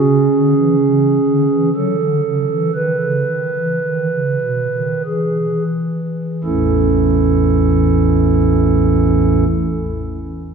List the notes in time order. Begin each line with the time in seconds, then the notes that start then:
Already playing: C#3 C#4 G#4
0.35 D3
0.56 E3
0.80 C#3
1.26 D3
1.50 E3
1.75 F#3 A4
2.00 D3
2.25 C#3
2.50 E3
2.74 D#3 B4
3.01 C#3
3.28 D#3
3.55 E3
3.82 D#3
4.11 C#3
4.41 B2
4.74 D#3
5.05 E3 G#4
6.44 A1 E2 E3 A3 C#4 E4 A4